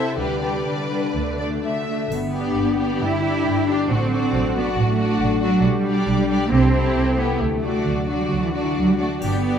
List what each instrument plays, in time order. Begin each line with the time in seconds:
Already playing: cello section C3, harp C3 A3 C4 A4, viola section C4 E4, violin section A4 C5 E5
0.02 harp E4
0.18 double bass section D2, harp D3, cello section D3, viola section G3 D4, violin section G4 B4 D5
0.42 viola section G3 D4, violin section G4 B4
0.51 harp B3
0.67 cello section D3, viola section G3 D4, harp D4, violin section B4
0.84 harp B4
0.91 viola section G3 D4
1.00 harp G4
1.15 double bass section D2, cello section D3, harp D3, viola section A3 D4
1.32 harp F#4
1.39 viola section A3 D4, violin section D5
1.48 harp A3
1.64 cello section D3, viola section A3 D4, harp D4, violin section E5
1.80 harp A4
1.88 cello section A3, viola section A3 D4
1.96 harp F#4
2.11 double bass section G1, harp G2, cello section B3, triangle
2.26 harp D3
2.33 viola section D4, violin section G4 D5
2.40 harp D4
2.56 double bass section G1, harp B4
2.71 harp G4
2.78 viola section D4, violin section G4 D5
2.87 harp B3
3.01 double bass section G1, harp G2, cello section E4
3.17 harp D3
3.24 viola section D4, violin section G4 D5
3.32 harp D4
3.46 double bass section G1, harp B4
3.61 harp G4
3.68 viola section D4, cello section D4, violin section G4 D5
3.76 harp B3
3.90 double bass section A1, harp A2, cello section C4, viola section D4, violin section F#4 D5
4.05 harp F#3
4.12 viola section D4, violin section F#4 D5
4.19 harp D4
4.33 double bass section A1, harp A4
4.48 harp F#4
4.54 cello section B3, viola section D4, violin section F#4 D5
4.63 harp A3
4.77 double bass section A1, harp A2, cello section A3
4.92 harp F#3
4.98 viola section D4, violin section F#4 D5
5.06 harp D4
5.20 double bass section A1, harp A4
5.35 harp F#4
5.42 cello section F#3, viola section D4, violin section F#4 D5
5.49 harp A3
5.63 double bass section B1, harp B2, cello section G3
5.78 harp B3
5.85 viola section D4, violin section G4 D5
5.91 harp D4
6.07 double bass section B1, harp G4
6.21 harp D4
6.30 viola section D4, violin section G4 D5
6.52 double bass section C2, harp C3, cello section C4, viola section E4, violin section G4 A4
6.67 harp C4
6.74 viola section E4, violin section G4 A4
6.82 harp E4
6.96 double bass section C2, harp G4
7.11 harp A4
7.18 cello section B3, viola section E4, violin section G4 A4
7.26 harp G3
7.41 double bass section D2, harp D3, cello section A3
7.56 harp F#3
7.63 viola section D4, violin section F#4 D5
7.71 harp D5
7.86 double bass section D2, harp F#4
8.02 harp D5
8.08 cello section F#3, viola section D4, violin section F#4 D5
8.17 harp D4
8.21 cello section G3
8.31 double bass section D2, harp D3, cello section F#3
8.44 cello section E3, harp F#3
8.54 cello section D3, viola section D4, violin section F#4 D5
8.62 harp D5
8.66 cello section E3
8.76 double bass section D2, cello section F#3, harp F#4
8.88 cello section G3, harp D5
8.98 cello section A3, viola section D4, violin section F#4 D5
9.07 harp D4
9.21 double bass section G1, harp G2, cello section B3, viola section D4, violin section G4 D5, triangle
9.37 harp D3
9.44 viola section D4, violin section G4 D5